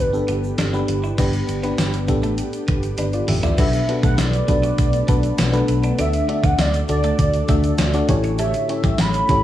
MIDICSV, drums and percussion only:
0, 0, Header, 1, 2, 480
1, 0, Start_track
1, 0, Tempo, 600000
1, 949, Time_signature, 4, 2, 24, 8
1, 7548, End_track
2, 0, Start_track
2, 0, Title_t, "Drums"
2, 112, Note_on_c, 9, 82, 44
2, 192, Note_off_c, 9, 82, 0
2, 225, Note_on_c, 9, 42, 73
2, 231, Note_on_c, 9, 82, 50
2, 305, Note_off_c, 9, 42, 0
2, 311, Note_off_c, 9, 82, 0
2, 349, Note_on_c, 9, 82, 49
2, 429, Note_off_c, 9, 82, 0
2, 464, Note_on_c, 9, 42, 83
2, 466, Note_on_c, 9, 38, 106
2, 468, Note_on_c, 9, 82, 71
2, 544, Note_off_c, 9, 42, 0
2, 546, Note_off_c, 9, 38, 0
2, 548, Note_off_c, 9, 82, 0
2, 587, Note_on_c, 9, 82, 46
2, 667, Note_off_c, 9, 82, 0
2, 707, Note_on_c, 9, 42, 90
2, 709, Note_on_c, 9, 82, 48
2, 787, Note_off_c, 9, 42, 0
2, 789, Note_off_c, 9, 82, 0
2, 829, Note_on_c, 9, 82, 50
2, 909, Note_off_c, 9, 82, 0
2, 945, Note_on_c, 9, 42, 75
2, 945, Note_on_c, 9, 49, 89
2, 946, Note_on_c, 9, 36, 106
2, 948, Note_on_c, 9, 82, 75
2, 1025, Note_off_c, 9, 42, 0
2, 1025, Note_off_c, 9, 49, 0
2, 1026, Note_off_c, 9, 36, 0
2, 1028, Note_off_c, 9, 82, 0
2, 1065, Note_on_c, 9, 42, 52
2, 1068, Note_on_c, 9, 82, 50
2, 1145, Note_off_c, 9, 42, 0
2, 1148, Note_off_c, 9, 82, 0
2, 1185, Note_on_c, 9, 82, 50
2, 1190, Note_on_c, 9, 42, 69
2, 1265, Note_off_c, 9, 82, 0
2, 1270, Note_off_c, 9, 42, 0
2, 1306, Note_on_c, 9, 82, 41
2, 1308, Note_on_c, 9, 42, 52
2, 1386, Note_off_c, 9, 82, 0
2, 1388, Note_off_c, 9, 42, 0
2, 1427, Note_on_c, 9, 38, 97
2, 1427, Note_on_c, 9, 42, 79
2, 1428, Note_on_c, 9, 82, 70
2, 1429, Note_on_c, 9, 54, 67
2, 1507, Note_off_c, 9, 38, 0
2, 1507, Note_off_c, 9, 42, 0
2, 1508, Note_off_c, 9, 82, 0
2, 1509, Note_off_c, 9, 54, 0
2, 1545, Note_on_c, 9, 82, 49
2, 1550, Note_on_c, 9, 42, 53
2, 1625, Note_off_c, 9, 82, 0
2, 1630, Note_off_c, 9, 42, 0
2, 1664, Note_on_c, 9, 82, 45
2, 1667, Note_on_c, 9, 36, 95
2, 1667, Note_on_c, 9, 42, 70
2, 1744, Note_off_c, 9, 82, 0
2, 1747, Note_off_c, 9, 36, 0
2, 1747, Note_off_c, 9, 42, 0
2, 1782, Note_on_c, 9, 82, 42
2, 1788, Note_on_c, 9, 42, 49
2, 1862, Note_off_c, 9, 82, 0
2, 1868, Note_off_c, 9, 42, 0
2, 1903, Note_on_c, 9, 42, 85
2, 1903, Note_on_c, 9, 82, 67
2, 1983, Note_off_c, 9, 42, 0
2, 1983, Note_off_c, 9, 82, 0
2, 2024, Note_on_c, 9, 82, 45
2, 2025, Note_on_c, 9, 42, 49
2, 2104, Note_off_c, 9, 82, 0
2, 2105, Note_off_c, 9, 42, 0
2, 2142, Note_on_c, 9, 42, 74
2, 2147, Note_on_c, 9, 36, 98
2, 2222, Note_off_c, 9, 42, 0
2, 2227, Note_off_c, 9, 36, 0
2, 2264, Note_on_c, 9, 42, 54
2, 2265, Note_on_c, 9, 82, 50
2, 2344, Note_off_c, 9, 42, 0
2, 2345, Note_off_c, 9, 82, 0
2, 2381, Note_on_c, 9, 82, 69
2, 2382, Note_on_c, 9, 42, 88
2, 2384, Note_on_c, 9, 48, 55
2, 2461, Note_off_c, 9, 82, 0
2, 2462, Note_off_c, 9, 42, 0
2, 2464, Note_off_c, 9, 48, 0
2, 2503, Note_on_c, 9, 82, 45
2, 2506, Note_on_c, 9, 42, 48
2, 2583, Note_off_c, 9, 82, 0
2, 2586, Note_off_c, 9, 42, 0
2, 2624, Note_on_c, 9, 45, 93
2, 2624, Note_on_c, 9, 46, 87
2, 2704, Note_off_c, 9, 45, 0
2, 2704, Note_off_c, 9, 46, 0
2, 2745, Note_on_c, 9, 82, 49
2, 2746, Note_on_c, 9, 42, 48
2, 2746, Note_on_c, 9, 43, 94
2, 2825, Note_off_c, 9, 82, 0
2, 2826, Note_off_c, 9, 42, 0
2, 2826, Note_off_c, 9, 43, 0
2, 2865, Note_on_c, 9, 42, 86
2, 2865, Note_on_c, 9, 49, 98
2, 2865, Note_on_c, 9, 82, 76
2, 2867, Note_on_c, 9, 36, 118
2, 2945, Note_off_c, 9, 42, 0
2, 2945, Note_off_c, 9, 49, 0
2, 2945, Note_off_c, 9, 82, 0
2, 2947, Note_off_c, 9, 36, 0
2, 2985, Note_on_c, 9, 82, 54
2, 2986, Note_on_c, 9, 42, 53
2, 3065, Note_off_c, 9, 82, 0
2, 3066, Note_off_c, 9, 42, 0
2, 3110, Note_on_c, 9, 42, 67
2, 3190, Note_off_c, 9, 42, 0
2, 3226, Note_on_c, 9, 36, 96
2, 3226, Note_on_c, 9, 42, 55
2, 3227, Note_on_c, 9, 82, 43
2, 3306, Note_off_c, 9, 36, 0
2, 3306, Note_off_c, 9, 42, 0
2, 3307, Note_off_c, 9, 82, 0
2, 3344, Note_on_c, 9, 38, 105
2, 3344, Note_on_c, 9, 42, 77
2, 3347, Note_on_c, 9, 54, 69
2, 3347, Note_on_c, 9, 82, 75
2, 3424, Note_off_c, 9, 38, 0
2, 3424, Note_off_c, 9, 42, 0
2, 3427, Note_off_c, 9, 54, 0
2, 3427, Note_off_c, 9, 82, 0
2, 3467, Note_on_c, 9, 42, 57
2, 3469, Note_on_c, 9, 82, 52
2, 3547, Note_off_c, 9, 42, 0
2, 3549, Note_off_c, 9, 82, 0
2, 3586, Note_on_c, 9, 42, 72
2, 3587, Note_on_c, 9, 36, 97
2, 3587, Note_on_c, 9, 82, 47
2, 3666, Note_off_c, 9, 42, 0
2, 3667, Note_off_c, 9, 36, 0
2, 3667, Note_off_c, 9, 82, 0
2, 3707, Note_on_c, 9, 42, 48
2, 3709, Note_on_c, 9, 82, 46
2, 3787, Note_off_c, 9, 42, 0
2, 3789, Note_off_c, 9, 82, 0
2, 3826, Note_on_c, 9, 42, 89
2, 3828, Note_on_c, 9, 36, 92
2, 3830, Note_on_c, 9, 82, 66
2, 3906, Note_off_c, 9, 42, 0
2, 3908, Note_off_c, 9, 36, 0
2, 3910, Note_off_c, 9, 82, 0
2, 3944, Note_on_c, 9, 42, 50
2, 3951, Note_on_c, 9, 82, 49
2, 4024, Note_off_c, 9, 42, 0
2, 4031, Note_off_c, 9, 82, 0
2, 4065, Note_on_c, 9, 42, 77
2, 4068, Note_on_c, 9, 36, 98
2, 4069, Note_on_c, 9, 82, 54
2, 4145, Note_off_c, 9, 42, 0
2, 4148, Note_off_c, 9, 36, 0
2, 4149, Note_off_c, 9, 82, 0
2, 4185, Note_on_c, 9, 42, 52
2, 4190, Note_on_c, 9, 82, 54
2, 4265, Note_off_c, 9, 42, 0
2, 4270, Note_off_c, 9, 82, 0
2, 4306, Note_on_c, 9, 42, 86
2, 4307, Note_on_c, 9, 54, 74
2, 4308, Note_on_c, 9, 38, 119
2, 4308, Note_on_c, 9, 82, 74
2, 4386, Note_off_c, 9, 42, 0
2, 4387, Note_off_c, 9, 54, 0
2, 4388, Note_off_c, 9, 38, 0
2, 4388, Note_off_c, 9, 82, 0
2, 4428, Note_on_c, 9, 42, 51
2, 4430, Note_on_c, 9, 82, 45
2, 4508, Note_off_c, 9, 42, 0
2, 4510, Note_off_c, 9, 82, 0
2, 4547, Note_on_c, 9, 42, 90
2, 4548, Note_on_c, 9, 82, 56
2, 4627, Note_off_c, 9, 42, 0
2, 4628, Note_off_c, 9, 82, 0
2, 4668, Note_on_c, 9, 42, 48
2, 4669, Note_on_c, 9, 82, 52
2, 4748, Note_off_c, 9, 42, 0
2, 4749, Note_off_c, 9, 82, 0
2, 4789, Note_on_c, 9, 42, 83
2, 4790, Note_on_c, 9, 82, 77
2, 4869, Note_off_c, 9, 42, 0
2, 4870, Note_off_c, 9, 82, 0
2, 4908, Note_on_c, 9, 42, 58
2, 4910, Note_on_c, 9, 82, 55
2, 4988, Note_off_c, 9, 42, 0
2, 4990, Note_off_c, 9, 82, 0
2, 5032, Note_on_c, 9, 42, 67
2, 5112, Note_off_c, 9, 42, 0
2, 5149, Note_on_c, 9, 36, 98
2, 5150, Note_on_c, 9, 42, 52
2, 5153, Note_on_c, 9, 82, 43
2, 5229, Note_off_c, 9, 36, 0
2, 5230, Note_off_c, 9, 42, 0
2, 5233, Note_off_c, 9, 82, 0
2, 5269, Note_on_c, 9, 38, 99
2, 5269, Note_on_c, 9, 42, 82
2, 5272, Note_on_c, 9, 54, 72
2, 5272, Note_on_c, 9, 82, 76
2, 5349, Note_off_c, 9, 38, 0
2, 5349, Note_off_c, 9, 42, 0
2, 5352, Note_off_c, 9, 54, 0
2, 5352, Note_off_c, 9, 82, 0
2, 5391, Note_on_c, 9, 82, 51
2, 5393, Note_on_c, 9, 42, 56
2, 5471, Note_off_c, 9, 82, 0
2, 5473, Note_off_c, 9, 42, 0
2, 5509, Note_on_c, 9, 82, 51
2, 5512, Note_on_c, 9, 42, 72
2, 5589, Note_off_c, 9, 82, 0
2, 5592, Note_off_c, 9, 42, 0
2, 5630, Note_on_c, 9, 42, 49
2, 5630, Note_on_c, 9, 82, 46
2, 5710, Note_off_c, 9, 42, 0
2, 5710, Note_off_c, 9, 82, 0
2, 5750, Note_on_c, 9, 82, 66
2, 5751, Note_on_c, 9, 36, 91
2, 5751, Note_on_c, 9, 42, 93
2, 5830, Note_off_c, 9, 82, 0
2, 5831, Note_off_c, 9, 36, 0
2, 5831, Note_off_c, 9, 42, 0
2, 5869, Note_on_c, 9, 42, 49
2, 5870, Note_on_c, 9, 82, 48
2, 5949, Note_off_c, 9, 42, 0
2, 5950, Note_off_c, 9, 82, 0
2, 5989, Note_on_c, 9, 42, 80
2, 5989, Note_on_c, 9, 82, 53
2, 5991, Note_on_c, 9, 36, 98
2, 6069, Note_off_c, 9, 42, 0
2, 6069, Note_off_c, 9, 82, 0
2, 6071, Note_off_c, 9, 36, 0
2, 6110, Note_on_c, 9, 42, 53
2, 6110, Note_on_c, 9, 82, 55
2, 6190, Note_off_c, 9, 42, 0
2, 6190, Note_off_c, 9, 82, 0
2, 6226, Note_on_c, 9, 82, 75
2, 6227, Note_on_c, 9, 42, 85
2, 6228, Note_on_c, 9, 54, 68
2, 6229, Note_on_c, 9, 38, 125
2, 6306, Note_off_c, 9, 82, 0
2, 6307, Note_off_c, 9, 42, 0
2, 6308, Note_off_c, 9, 54, 0
2, 6309, Note_off_c, 9, 38, 0
2, 6347, Note_on_c, 9, 82, 46
2, 6350, Note_on_c, 9, 42, 52
2, 6427, Note_off_c, 9, 82, 0
2, 6430, Note_off_c, 9, 42, 0
2, 6468, Note_on_c, 9, 82, 54
2, 6469, Note_on_c, 9, 42, 92
2, 6470, Note_on_c, 9, 36, 112
2, 6548, Note_off_c, 9, 82, 0
2, 6549, Note_off_c, 9, 42, 0
2, 6550, Note_off_c, 9, 36, 0
2, 6589, Note_on_c, 9, 42, 48
2, 6591, Note_on_c, 9, 82, 50
2, 6669, Note_off_c, 9, 42, 0
2, 6671, Note_off_c, 9, 82, 0
2, 6709, Note_on_c, 9, 42, 84
2, 6709, Note_on_c, 9, 82, 80
2, 6789, Note_off_c, 9, 42, 0
2, 6789, Note_off_c, 9, 82, 0
2, 6830, Note_on_c, 9, 82, 55
2, 6831, Note_on_c, 9, 42, 58
2, 6910, Note_off_c, 9, 82, 0
2, 6911, Note_off_c, 9, 42, 0
2, 6954, Note_on_c, 9, 42, 72
2, 7034, Note_off_c, 9, 42, 0
2, 7069, Note_on_c, 9, 42, 52
2, 7069, Note_on_c, 9, 82, 42
2, 7070, Note_on_c, 9, 36, 100
2, 7149, Note_off_c, 9, 42, 0
2, 7149, Note_off_c, 9, 82, 0
2, 7150, Note_off_c, 9, 36, 0
2, 7186, Note_on_c, 9, 38, 104
2, 7186, Note_on_c, 9, 42, 77
2, 7189, Note_on_c, 9, 54, 69
2, 7189, Note_on_c, 9, 82, 75
2, 7266, Note_off_c, 9, 38, 0
2, 7266, Note_off_c, 9, 42, 0
2, 7269, Note_off_c, 9, 54, 0
2, 7269, Note_off_c, 9, 82, 0
2, 7306, Note_on_c, 9, 82, 51
2, 7313, Note_on_c, 9, 42, 56
2, 7386, Note_off_c, 9, 82, 0
2, 7393, Note_off_c, 9, 42, 0
2, 7426, Note_on_c, 9, 82, 50
2, 7432, Note_on_c, 9, 36, 105
2, 7432, Note_on_c, 9, 42, 75
2, 7506, Note_off_c, 9, 82, 0
2, 7512, Note_off_c, 9, 36, 0
2, 7512, Note_off_c, 9, 42, 0
2, 7548, End_track
0, 0, End_of_file